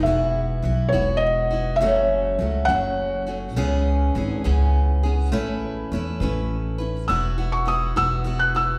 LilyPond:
<<
  \new Staff \with { instrumentName = "Felt piano" } { \time 6/8 \key e \major \tempo 4. = 68 e''4. cis''8 dis''4 | e''4. fis''4 r8 | r2. | r2. |
e'''8. cis'''16 dis'''8 e'''8. fis'''16 e'''8 | }
  \new Staff \with { instrumentName = "Steel-string acoustic guitar" } { \time 6/8 \key e \major <e b e' fis'>4 <e b e' fis'>8 <e b e' fis'>4 <b e' fis'>8 | <fis, cis fis a cis' fis'>4 <fis a cis' fis'>8 <fis, cis fis a cis' fis'>4 <fis a cis' fis'>8 | <cis e b cis' gis'>4 <e b cis' gis'>8 <cis e b cis' gis'>4 <b cis' gis'>8 | <a cis' e' b'>4 <a cis' e' b'>8 <a cis' e' b'>4 <cis' e' b'>8 |
<e b e' fis'>8 <b e' fis'>8 <e b e' fis'>8 <e b e' fis'>8 <e b e' fis'>8 <b e' fis'>8 | }
  \new Staff \with { instrumentName = "Upright bass" } { \clef bass \time 6/8 \key e \major e,,4 b,,8 e,,4. | fis,,4 cis,8 fis,,4. | cis,4 gis,,8 cis,4. | a,,4 e,8 a,,4. |
e,,4. e,,4. | }
>>